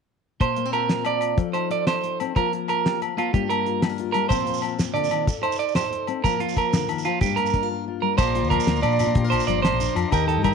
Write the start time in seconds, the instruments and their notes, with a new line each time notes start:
0.40 steel-string acoustic guitar A#2 A#4, clean electric guitar C5, kick, closed hi-hat, low agogo
0.56 steel-string acoustic guitar A#3, closed hi-hat
0.65 steel-string acoustic guitar C4
0.73 steel-string acoustic guitar F4, clean electric guitar A#4, closed hi-hat, low agogo
0.89 steel-string acoustic guitar A#4, snare, closed hi-hat
1.05 steel-string acoustic guitar F4, clean electric guitar D5, closed hi-hat, low agogo
1.21 closed hi-hat, low agogo
1.37 steel-string acoustic guitar F3 A4, kick, closed hi-hat
1.53 steel-string acoustic guitar D#4, clean electric guitar C5, closed hi-hat, low agogo
1.70 steel-string acoustic guitar A4, clean electric guitar D5, closed hi-hat
1.87 steel-string acoustic guitar A4, clean electric guitar C5, snare, closed hi-hat, low agogo
2.03 steel-string acoustic guitar A4, closed hi-hat
2.20 steel-string acoustic guitar C4, closed hi-hat, low agogo
2.36 steel-string acoustic guitar F3 A#3 F4 A#4, clean electric guitar A#4, kick, closed hi-hat, low agogo
2.53 steel-string acoustic guitar F4, closed hi-hat
2.68 clean electric guitar A#4, steel-string acoustic guitar A#4, closed hi-hat, low agogo
2.86 steel-string acoustic guitar G4, snare, closed hi-hat
3.01 steel-string acoustic guitar A#4, closed hi-hat, low agogo
3.17 steel-string acoustic guitar A#3, clean electric guitar F4, closed hi-hat, low agogo
3.33 steel-string acoustic guitar G2 G3 A#3 F4, clean electric guitar G4, muted steel-string acoustic guitar stroke, kick, closed hi-hat
3.49 steel-string acoustic guitar A#3, clean electric guitar A#4, closed hi-hat, low agogo
3.66 steel-string acoustic guitar F4, closed hi-hat
3.82 steel-string acoustic guitar G4, snare, closed hi-hat, low agogo
3.90 steel-string acoustic guitar A#4
3.98 steel-string acoustic guitar F4, closed hi-hat
4.12 steel-string acoustic guitar G3, clean electric guitar A#4, closed hi-hat, low agogo
4.29 steel-string acoustic guitar A#2 F3 C4 F4, clean electric guitar C5, kick, closed hi-hat, low agogo, shekere
4.33 steel-string acoustic guitar A#4
4.40 shekere
4.47 steel-string acoustic guitar C4, closed hi-hat, shekere
4.54 shekere
4.62 steel-string acoustic guitar F4, closed hi-hat, low agogo, shekere
4.79 muted steel-string acoustic guitar stroke, snare, closed hi-hat, shekere
4.94 steel-string acoustic guitar D3, clean electric guitar D5, closed hi-hat, low agogo
5.04 shekere
5.11 steel-string acoustic guitar D#3, closed hi-hat, low agogo
5.27 steel-string acoustic guitar A4, muted steel-string acoustic guitar stroke, kick, closed hi-hat, shekere
5.43 steel-string acoustic guitar D#4, clean electric guitar C5, closed hi-hat, low agogo
5.52 shekere
5.59 clean electric guitar D5, closed hi-hat
5.68 shekere
5.75 steel-string acoustic guitar G4, clean electric guitar C5, snare, closed hi-hat, low agogo, shekere
5.84 steel-string acoustic guitar A4
5.92 steel-string acoustic guitar A4, closed hi-hat
6.07 steel-string acoustic guitar C4, closed hi-hat, low agogo
6.24 steel-string acoustic guitar F3 A#3 F4 A#4, clean electric guitar A#4, kick, closed hi-hat, low agogo, shekere
6.40 steel-string acoustic guitar F4, clean electric guitar F4, closed hi-hat
6.49 shekere
6.57 steel-string acoustic guitar A#4, clean electric guitar A#4, kick, closed hi-hat, low agogo, shekere
6.73 steel-string acoustic guitar D3, snare, closed hi-hat, shekere
6.83 shekere
6.89 steel-string acoustic guitar D#3, closed hi-hat, low agogo, shekere
6.98 shekere
7.05 steel-string acoustic guitar F3, clean electric guitar F4, closed hi-hat, low agogo
7.21 steel-string acoustic guitar G2 A#4, clean electric guitar G4, kick, closed hi-hat, shekere
7.36 steel-string acoustic guitar A#3, clean electric guitar A#4, closed hi-hat, low agogo
7.46 shekere
7.54 steel-string acoustic guitar D4, kick, closed hi-hat
7.63 steel-string acoustic guitar F4
7.71 steel-string acoustic guitar A#4
7.88 steel-string acoustic guitar F4
8.02 steel-string acoustic guitar G3, clean electric guitar A#4
8.18 fingered electric bass A#1, steel-string acoustic guitar A#2, clean electric guitar C5, transistor combo organ D5 A#5 C6, muted steel-string acoustic guitar stroke, kick, crash, low agogo, shekere
8.35 steel-string acoustic guitar F4, closed hi-hat
8.43 fingered electric bass D2, shekere
8.50 steel-string acoustic guitar F3, clean electric guitar A#4, kick, closed hi-hat, low agogo
8.60 shekere
8.67 fingered electric bass D2, steel-string acoustic guitar A#4, snare, closed hi-hat
8.76 shekere
8.82 fingered electric bass A#2, steel-string acoustic guitar A#2 D4, clean electric guitar D5, closed hi-hat, low agogo, shekere
8.92 shekere
8.99 steel-string acoustic guitar F4, closed hi-hat, low agogo, shekere
9.07 fingered electric bass A#2
9.15 steel-string acoustic guitar A#2 G4, kick, closed hi-hat
9.24 steel-string acoustic guitar A#4
9.30 fingered electric bass A#1, clean electric guitar C5, closed hi-hat, low agogo, shekere
9.40 shekere
9.47 fingered electric bass G1, steel-string acoustic guitar F3, clean electric guitar D5, closed hi-hat
9.62 steel-string acoustic guitar A#4, clean electric guitar C5, snare, closed hi-hat, low agogo
9.73 fingered electric bass A#1
9.80 steel-string acoustic guitar D4, closed hi-hat, shekere
9.95 fingered electric bass F2, steel-string acoustic guitar F4, closed hi-hat, low agogo, shekere
10.11 fingered electric bass D#2, steel-string acoustic guitar D#3 G4, clean electric guitar A#4, transistor combo organ D#5 G5, kick, closed hi-hat, low agogo, shekere
10.27 steel-string acoustic guitar D#4, clean electric guitar A4, closed hi-hat
10.37 fingered electric bass G2
10.42 steel-string acoustic guitar G3, clean electric guitar A#4, kick, closed hi-hat, low agogo